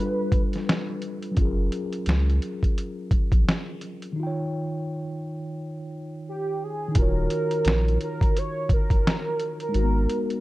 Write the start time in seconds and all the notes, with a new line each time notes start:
Already playing: G3 D4 B4
0.00 F4 A4
0.06 B4
0.32 kick, closed hi-hat
0.53 snare, closed hi-hat
0.69 snare, closed hi-hat
1.02 closed hi-hat
1.23 closed hi-hat
1.31 F#3 C#4
1.37 F#1 F4, kick, closed hi-hat
1.42 G#4 A#4
1.72 closed hi-hat
1.93 closed hi-hat
2.06 C#2, snare, closed hi-hat
2.30 closed hi-hat
2.42 closed hi-hat
2.63 kick, closed hi-hat
2.78 closed hi-hat
3.11 kick, closed hi-hat
3.32 A#1, kick, closed hi-hat
3.49 snare, closed hi-hat
3.81 closed hi-hat
4.02 closed hi-hat
4.13 D#3 D#4
4.20 F4 G5
4.27 C#5
6.29 G4
6.64 G#4
6.88 D#3 D#4
6.95 D#1 F4 F#4 A#4, kick, closed hi-hat
7.02 C#5
7.30 closed hi-hat
7.51 closed hi-hat
7.65 A#1, snare, closed hi-hat
7.88 closed hi-hat
8.01 A#4, closed hi-hat
8.21 kick, closed hi-hat
8.37 C#5, closed hi-hat
8.69 kick, closed hi-hat
8.73 A#4
8.90 F#1, kick, closed hi-hat
9.07 snare, closed hi-hat
9.40 closed hi-hat
9.60 A#4, closed hi-hat
9.69 G#3 D#4
9.74 G#1 F#4, closed hi-hat
9.79 B3 A#4
10.10 closed hi-hat
10.30 closed hi-hat